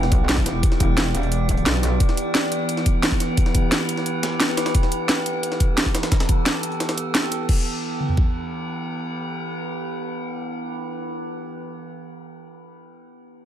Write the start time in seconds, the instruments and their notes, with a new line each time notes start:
Already playing: wobble bass E1, synth drone E3 B3 G4 D5
0.03 snare
0.12 wobble bass B1, kick, closed hi-hat
0.29 snare, closed hi-hat, open hi-hat
0.37 kick
0.46 wobble bass E1, snare, closed hi-hat
0.63 kick, closed hi-hat
0.72 snare
0.80 wobble bass E1, kick, closed hi-hat
0.97 snare, closed hi-hat
1.15 wobble bass E1, closed hi-hat
1.23 closed hi-hat
1.32 closed hi-hat
1.49 kick, closed hi-hat
1.57 closed hi-hat
1.66 wobble bass B1, snare, closed hi-hat
1.83 snare, closed hi-hat
2.00 synth drone B4, kick, closed hi-hat
2.09 snare
2.17 closed hi-hat
2.35 snare, closed hi-hat
2.52 closed hi-hat
2.69 closed hi-hat
2.77 snare
2.86 kick, closed hi-hat
3.03 snare, closed hi-hat, open hi-hat
3.12 kick
3.20 snare, closed hi-hat
3.37 kick, closed hi-hat
3.46 snare
3.55 kick, closed hi-hat
3.72 snare, closed hi-hat
3.89 closed hi-hat
3.97 snare
4.06 closed hi-hat
4.23 snare, closed hi-hat
4.40 snare, closed hi-hat
4.49 snare
4.57 snare, closed hi-hat
4.66 snare, closed hi-hat
4.75 synth drone A4, kick, closed hi-hat
4.83 snare
4.92 closed hi-hat
5.09 snare, closed hi-hat
5.26 closed hi-hat
5.43 closed hi-hat
5.52 snare
5.60 kick, closed hi-hat
5.77 snare, closed hi-hat, open hi-hat
5.86 kick
5.95 snare, closed hi-hat
6.03 snare, closed hi-hat
6.12 kick, snare, closed hi-hat
6.20 snare, closed hi-hat
6.29 kick, closed hi-hat
6.46 snare, closed hi-hat
6.63 closed hi-hat
6.72 closed hi-hat
6.80 snare, closed hi-hat
6.89 snare, closed hi-hat
6.97 closed hi-hat
7.15 snare, closed hi-hat
7.32 closed hi-hat
7.49 synth drone E3 B3 G4 B4, kick, crash
8.00 mid tom
8.09 floor tom
8.17 kick